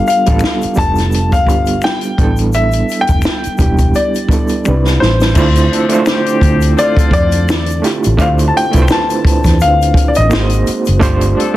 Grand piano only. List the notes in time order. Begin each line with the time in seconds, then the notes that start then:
0.08 F5
0.78 A5
1.33 F5
1.84 G5
2.55 E5
3.01 G5
3.96 D5
5.00 C5
6.79 D5
7.13 D5
8.21 F5
8.48 A5
8.57 G5
8.92 A5
9.62 F5
10.08 D5
10.16 D#5